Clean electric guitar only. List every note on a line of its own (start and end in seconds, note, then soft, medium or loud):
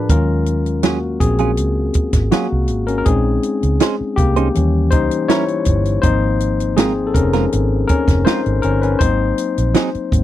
0.83 0.97 F#3 medium
0.83 0.97 C#4 medium
0.83 0.98 F4 medium
0.83 0.98 G#4 medium
1.39 1.51 F#3 soft
1.39 1.51 C#4 soft
1.39 1.50 F4 soft
1.39 1.50 G#4 soft
2.32 2.46 F#3 medium
2.32 2.46 C#4 medium
2.32 2.46 F4 medium
2.32 2.47 G#4 medium
3.81 3.94 C#4 medium
3.81 3.95 D#4 medium
3.81 3.95 G#4 medium
3.81 3.95 C5 medium
4.36 4.48 C#4 soft
4.36 4.48 D#4 soft
4.36 4.47 G#4 soft
4.36 4.47 C5 medium
5.29 5.43 G3 medium
5.29 5.43 C#4 medium
5.29 5.44 E4 medium
5.29 5.44 A#4 medium
6.77 6.91 G#3 medium
6.77 6.92 C4 medium
6.77 6.92 F4 medium
6.77 6.92 A#4 medium
7.34 7.45 G#3 soft
7.34 7.45 C4 soft
7.34 7.45 F4 medium
7.34 7.44 A#4 medium
8.26 8.40 G#3 medium
8.26 8.40 C4 medium
8.26 8.41 F4 medium
8.26 8.41 A#4 medium
9.74 9.88 F#3 medium
9.74 9.89 C4 medium
9.74 9.89 D#4 medium
9.74 9.89 G#4 medium